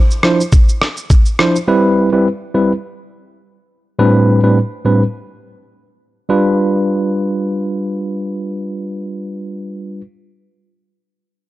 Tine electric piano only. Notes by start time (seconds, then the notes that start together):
0.23 F3 D4 E4 C5
1.39 F3 D4 E4 C5
1.68 G3 C4 E4 B4
2.12 G3 C4 E4 B4
2.54 G3 C4 E4 B4
3.99 A2 G3 C4 D4 B4
4.43 A2 G3 C4 D4 B4
4.85 A2 G3 C4 D4 B4
6.29 G3 D4 F4 B4